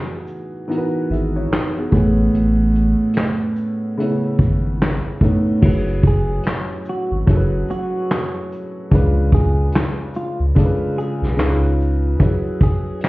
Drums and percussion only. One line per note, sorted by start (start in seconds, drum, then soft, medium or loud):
0.27 shaker medium
0.71 closed hi-hat medium
1.13 shaker soft
1.53 snare loud
1.53 clap medium
1.53 closed hi-hat medium
1.92 kick medium
1.92 closed hi-hat soft
1.92 shaker soft
2.35 closed hi-hat medium
2.75 closed hi-hat soft
2.75 shaker soft
3.13 snare loud
3.13 closed hi-hat medium
3.18 clap medium
3.56 shaker medium
4.00 closed hi-hat medium
4.39 kick medium
4.39 shaker soft
4.82 snare loud
4.82 clap medium
4.82 closed hi-hat medium
5.21 kick medium
5.21 closed hi-hat soft
5.21 shaker soft
5.63 kick loud
5.63 crash medium
6.03 kick medium
6.03 closed hi-hat soft
6.03 shaker soft
6.43 snare loud
6.43 closed hi-hat medium
6.48 clap medium
6.85 shaker medium
7.27 kick loud
7.27 closed hi-hat medium
7.71 shaker soft
8.11 snare loud
8.11 clap medium
8.11 closed hi-hat medium
8.52 closed hi-hat soft
8.52 shaker soft
8.91 kick loud
8.91 closed hi-hat medium
9.32 kick medium
9.32 shaker soft
9.72 snare loud
9.72 closed hi-hat medium
9.76 clap medium
10.14 shaker medium
10.56 kick loud
10.56 closed hi-hat medium
11.00 shaker soft
11.24 snare soft
11.39 snare loud
11.39 clap medium
11.39 closed hi-hat medium
11.81 shaker soft
12.20 kick loud
12.20 closed hi-hat medium
12.61 kick loud
12.61 closed hi-hat medium
12.61 shaker soft
13.01 snare loud
13.01 closed hi-hat medium
13.05 clap medium